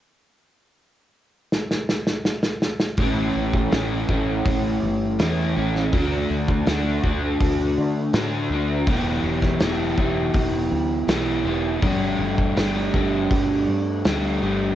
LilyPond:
<<
  \new Staff \with { instrumentName = "Overdriven electric guitar" } { \time 4/4 \key a \mixolydian \tempo 4 = 81 r1 | <a, e a cis' e'>4 <e a cis' e'>8 <a cis' e'>4. <e a cis' e'>8 <a cis' e'>8 | <d a d' fis'>4 <d a d' fis'>8 <a d' fis'>4. <d a d' fis'>8 <a d' fis'>8 | <e b e' g'>4 <e b e' g'>8 <b e' g'>4. <e b e' g'>8 <b e' g'>8 |
<g a d' g'>4 <g a d' g'>8 <a d' g'>4. <g a d' g'>8 <a d' g'>8 | }
  \new Staff \with { instrumentName = "Fretless electric bass" } { \clef bass \time 4/4 \key a \mixolydian r1 | a,,8 a,,8 a,,8 a,,8 a,,8 g,,8 e,8 a,,8 | d,8 d,8 d,8 d,8 d,8 d8 a,8 d,8 | e,,8 e,,8 e,,8 e,,8 e,,8 d,8 b,,8 e,,8 |
g,,8 g,,8 g,,8 g,,8 g,,8 g,8 d,8 g,,8 | }
  \new DrumStaff \with { instrumentName = "Drums" } \drummode { \time 4/4 r4 r4 sn16 sn16 sn16 sn16 sn16 sn16 sn16 sn16 | <hho bd>8. bd16 <hho sn>8 bd8 <hho bd>4 <hho sn>8. sn16 | <hho bd>8. bd16 <hho sn>8 bd8 <hho bd>4 <hho sn>4 | <hho bd>8. <bd sn>16 <hho sn>8 bd8 <hho bd>4 <hho sn>4 |
<hho bd>8. bd16 <hho sn>8 bd8 <hho bd>4 <hho sn>4 | }
>>